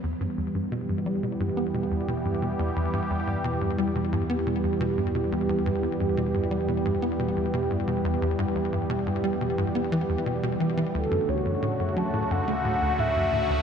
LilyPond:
<<
  \new Staff \with { instrumentName = "Soft synth lead" } { \time 4/4 \key e \dorian \tempo 4 = 88 r1 | r1 | r1 | r1 |
a'8 cis''4 a''8 fis''4 e''4 | }
  \new Staff \with { instrumentName = "Analog synth pad" } { \clef bass \time 4/4 \key e \dorian <e g b g'>1~ | <e g b g'>1~ | <e g b g'>1~ | <e g b g'>1 |
<cis d a fis'>1 | }
  \new Staff \with { instrumentName = "Analog synth bass" } { \clef bass \time 4/4 \key e \dorian e,16 g,16 e,16 g,16 b,16 g,16 g16 b,16 g,16 b16 b,16 e,16 b,16 g,16 b,16 e,16 | e,16 g,16 e,16 g,16 b,16 g,16 g16 b,16 g,16 b16 b,16 e,16 b,16 g,16 b,16 e,16 | e,16 g,16 e,16 g,16 b,16 g,16 g16 b,16 g,16 b16 b,16 e,16 b,16 g,16 b,16 e,16 | e,16 g,16 e,16 g,16 b,16 g,16 g16 b,16 g,16 b16 e16 e,16 b,16 b,16 e16 e16 |
d,16 fis,16 d,16 fis,16 a,16 fis,16 fis16 a,16 fis,16 a16 a,16 d,16 a,16 fis,16 a,16 d,16 | }
  \new Staff \with { instrumentName = "Analog synth bass" } { \clef bass \time 4/4 \key e \dorian e,1~ | e,1~ | e,1~ | e,1 |
d,1 | }
>>